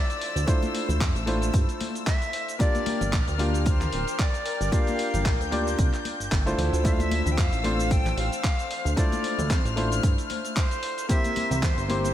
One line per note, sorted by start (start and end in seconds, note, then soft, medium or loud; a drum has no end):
0.00 0.44 A3 medium
0.00 0.45 D4 medium
0.00 0.45 E4 medium
0.00 0.45 F4 medium
0.00 0.45 C5 medium
0.00 2.56 C5 medium
0.00 0.50 D5 loud
0.00 2.56 E6 medium
0.10 closed hi-hat soft
0.10 shaker soft
0.21 open hi-hat loud
0.36 0.45 D2 loud
0.36 closed hi-hat soft
0.36 shaker medium
0.47 1.24 A3 medium
0.47 1.24 D4 medium
0.47 1.24 E4 medium
0.47 1.25 F4 medium
0.47 1.01 C5 medium
0.47 1.25 C5 medium
0.47 kick loud
0.47 closed hi-hat loud
0.47 shaker medium
0.62 closed hi-hat soft
0.62 high conga medium
0.62 shaker soft
0.75 open hi-hat loud
0.89 1.02 D2 loud
0.89 closed hi-hat soft
0.89 low conga medium
0.89 shaker medium
1.01 1.13 F2 medium
1.01 kick loud
1.01 clap loud
1.01 closed hi-hat loud
1.01 shaker medium
1.15 1.51 A1 medium
1.15 closed hi-hat soft
1.15 shaker soft
1.26 2.57 A3 medium
1.26 2.57 D4 medium
1.26 2.57 E4 medium
1.26 2.58 F4 medium
1.26 2.58 C5 medium
1.26 open hi-hat loud
1.26 high conga medium
1.42 closed hi-hat soft
1.42 shaker medium
1.54 1.66 G2 medium
1.54 kick loud
1.54 closed hi-hat medium
1.54 shaker medium
1.69 closed hi-hat soft
1.69 shaker soft
1.80 open hi-hat loud
1.80 high conga medium
1.95 closed hi-hat soft
1.95 shaker medium
2.07 2.56 E5 loud
2.07 kick loud
2.07 clap loud
2.07 closed hi-hat medium
2.07 shaker medium
2.22 closed hi-hat soft
2.22 shaker soft
2.33 open hi-hat loud
2.48 closed hi-hat soft
2.48 shaker medium
2.59 3.36 A#3 medium
2.59 3.37 D4 medium
2.59 3.37 F4 medium
2.59 3.37 G4 medium
2.59 6.54 A#4 medium
2.59 3.36 D5 loud
2.59 3.37 D5 medium
2.59 6.54 G5 medium
2.59 4.70 F6 medium
2.59 kick loud
2.59 closed hi-hat medium
2.59 shaker medium
2.75 closed hi-hat soft
2.75 high conga medium
2.75 shaker soft
2.86 open hi-hat loud
2.86 high conga medium
3.01 3.14 G1 loud
3.01 closed hi-hat soft
3.01 low conga medium
3.01 shaker medium
3.13 3.25 A#1 medium
3.13 kick loud
3.13 clap loud
3.13 closed hi-hat medium
3.13 shaker medium
3.28 3.90 D2 medium
3.28 closed hi-hat soft
3.28 shaker soft
3.38 4.69 A#3 medium
3.38 4.69 D4 medium
3.38 4.69 F4 medium
3.38 4.70 G4 medium
3.38 4.70 D5 medium
3.38 open hi-hat loud
3.38 high conga medium
3.54 closed hi-hat soft
3.54 shaker medium
3.66 4.22 C5 medium
3.66 kick loud
3.66 closed hi-hat medium
3.66 shaker medium
3.81 clap soft
3.81 closed hi-hat soft
3.81 low conga medium
3.81 shaker soft
3.92 4.05 D1 loud
3.92 open hi-hat loud
4.07 closed hi-hat soft
4.07 shaker medium
4.19 4.74 D5 loud
4.19 kick loud
4.19 clap loud
4.19 closed hi-hat medium
4.19 shaker medium
4.34 closed hi-hat soft
4.34 shaker soft
4.46 open hi-hat loud
4.61 4.70 G1 loud
4.61 closed hi-hat soft
4.61 shaker medium
4.72 5.49 A#3 medium
4.72 5.49 D4 medium
4.72 5.49 F4 medium
4.72 5.50 G4 medium
4.72 5.50 D5 medium
4.72 5.52 F5 loud
4.72 6.56 G6 medium
4.72 kick loud
4.72 closed hi-hat medium
4.72 shaker medium
4.87 closed hi-hat soft
4.87 high conga medium
4.87 shaker soft
4.99 open hi-hat loud
5.14 5.27 G1 loud
5.14 closed hi-hat soft
5.14 low conga medium
5.14 shaker medium
5.25 5.38 A#1 medium
5.25 kick loud
5.25 clap loud
5.25 closed hi-hat medium
5.25 shaker medium
5.40 5.75 D2 medium
5.40 closed hi-hat soft
5.40 shaker soft
5.51 6.43 A#3 medium
5.51 6.43 D4 medium
5.51 6.44 F4 medium
5.51 6.44 G4 medium
5.51 6.44 D5 medium
5.51 open hi-hat loud
5.51 high conga medium
5.67 closed hi-hat soft
5.67 shaker medium
5.79 5.91 C2 medium
5.79 kick loud
5.79 closed hi-hat medium
5.79 shaker medium
5.93 clap soft
5.93 closed hi-hat soft
5.93 shaker soft
6.05 open hi-hat loud
6.05 high conga medium
6.20 6.29 G1 soft
6.20 closed hi-hat soft
6.20 shaker medium
6.32 6.54 G1 medium
6.32 kick loud
6.32 clap loud
6.32 closed hi-hat medium
6.32 shaker medium
6.46 6.82 A3 medium
6.46 6.82 D4 medium
6.46 6.82 E4 medium
6.46 6.82 F4 medium
6.46 6.82 C5 loud
6.46 closed hi-hat soft
6.46 shaker soft
6.58 6.70 D2 medium
6.58 11.06 C5 medium
6.58 8.69 E6 medium
6.58 open hi-hat loud
6.58 low conga medium
6.73 7.22 D2 loud
6.73 closed hi-hat soft
6.73 shaker medium
6.84 7.61 A3 medium
6.84 7.61 D4 medium
6.84 7.62 E4 medium
6.84 7.62 F4 medium
6.84 7.62 C5 medium
6.84 6.94 E5 loud
6.84 kick loud
6.84 closed hi-hat medium
6.84 shaker medium
6.93 7.03 F5 medium
7.00 7.33 E5 loud
7.00 closed hi-hat soft
7.00 high conga medium
7.00 shaker soft
7.11 open hi-hat loud
7.11 high conga medium
7.26 7.39 D2 loud
7.26 closed hi-hat soft
7.26 low conga medium
7.26 shaker medium
7.32 7.40 G5 medium
7.38 7.50 F2 medium
7.38 7.93 F5 loud
7.38 kick loud
7.38 clap loud
7.38 closed hi-hat medium
7.38 shaker medium
7.52 8.14 A1 medium
7.52 closed hi-hat soft
7.52 shaker soft
7.63 8.94 A3 medium
7.63 8.94 C4 medium
7.63 8.94 D4 medium
7.63 8.95 F4 medium
7.63 8.95 C5 medium
7.63 open hi-hat loud
7.63 high conga medium
7.79 closed hi-hat soft
7.79 shaker medium
7.91 8.18 G5 loud
7.91 kick loud
7.91 closed hi-hat medium
7.91 shaker medium
8.06 clap soft
8.06 closed hi-hat soft
8.06 low conga medium
8.06 shaker soft
8.17 8.30 A1 loud
8.17 8.94 F5 loud
8.17 open hi-hat loud
8.32 closed hi-hat soft
8.32 shaker medium
8.44 kick loud
8.44 clap loud
8.44 closed hi-hat medium
8.44 shaker medium
8.59 closed hi-hat soft
8.59 shaker soft
8.70 11.07 F6 medium
8.70 open hi-hat loud
8.85 8.95 D2 medium
8.85 closed hi-hat soft
8.85 shaker medium
8.96 9.74 A3 medium
8.96 9.74 D4 medium
8.96 9.74 E4 medium
8.96 9.74 F4 medium
8.96 9.75 C5 medium
8.96 9.51 D5 loud
8.96 kick loud
8.96 closed hi-hat medium
8.96 shaker medium
9.12 closed hi-hat soft
9.12 high conga medium
9.12 shaker soft
9.24 open hi-hat loud
9.38 9.52 D2 loud
9.38 closed hi-hat soft
9.38 low conga medium
9.38 shaker medium
9.50 9.63 F2 medium
9.50 10.03 C5 medium
9.50 kick loud
9.50 clap loud
9.50 closed hi-hat medium
9.50 shaker medium
9.65 10.00 A1 medium
9.65 closed hi-hat soft
9.65 shaker soft
9.76 11.06 A3 medium
9.76 11.06 D4 medium
9.76 11.07 E4 medium
9.76 11.07 F4 medium
9.76 11.07 C5 medium
9.76 open hi-hat loud
9.76 high conga medium
9.92 closed hi-hat soft
9.92 shaker medium
10.03 10.16 G2 medium
10.03 kick loud
10.03 closed hi-hat medium
10.03 shaker medium
10.18 closed hi-hat soft
10.18 shaker soft
10.30 open hi-hat medium
10.30 high conga medium
10.45 closed hi-hat soft
10.45 shaker medium
10.56 11.06 C5 loud
10.56 kick loud
10.56 clap loud
10.56 closed hi-hat medium
10.56 shaker medium
10.71 closed hi-hat soft
10.71 shaker soft
10.83 open hi-hat loud
10.98 closed hi-hat soft
10.98 shaker medium
11.09 11.86 A#3 medium
11.09 11.86 C4 medium
11.09 11.87 E4 medium
11.09 11.87 G4 medium
11.09 12.14 A#4 medium
11.09 11.87 C5 medium
11.09 11.65 E5 loud
11.09 12.14 E5 medium
11.09 12.14 C6 medium
11.09 kick loud
11.09 closed hi-hat loud
11.09 shaker medium
11.24 closed hi-hat soft
11.24 high conga medium
11.24 shaker soft
11.36 open hi-hat loud
11.36 high conga medium
11.51 11.64 C2 loud
11.51 closed hi-hat soft
11.51 low conga medium
11.51 shaker medium
11.63 11.75 E2 medium
11.63 12.14 C5 loud
11.63 kick loud
11.63 clap loud
11.63 closed hi-hat medium
11.63 shaker medium
11.77 12.14 G1 medium
11.77 closed hi-hat soft
11.77 shaker soft
11.88 12.14 A#3 medium
11.88 12.14 C4 medium
11.88 12.14 E4 medium
11.88 12.14 G4 medium
11.88 12.14 C5 medium
11.88 open hi-hat loud
11.88 high conga medium
12.04 closed hi-hat soft
12.04 shaker medium